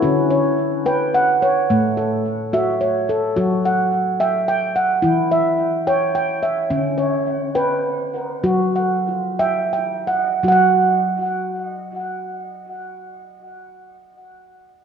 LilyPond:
<<
  \new Staff \with { instrumentName = "Handpan" } { \time 6/8 \key e \mixolydian \tempo 4. = 72 << { e'16 r16 cis''4 g''8 fis''8 cis''8~ | cis''8 a'4 e''8 cis''8 a'8~ | a'8 fis''4 g''8 g''8 fis''8~ | fis''8 e''4 g''8 g''8 e''8~ |
e''8 cis''4 g''4. | r8 fis''4 g''8 g''8 fis''8~ | fis''8 r2 r8 | r2. | } \\ { cis'4 r8 b'4 r8 | a4 r8 fis'4 r8 | fis'4 r8 e''4 r8 | e'4 r8 cis''4 r8 |
cis'4 r8 b'4 r8 | fis'4 r8 e''4 r8 | r2. | r2. | } >> }
  \new Staff \with { instrumentName = "Handpan" } { \clef bass \time 6/8 \key e \mixolydian d2. | a,2. | fis2. | e2. |
d2. | fis2. | <fis fis' fis''>2.~ | <fis fis' fis''>2. | }
>>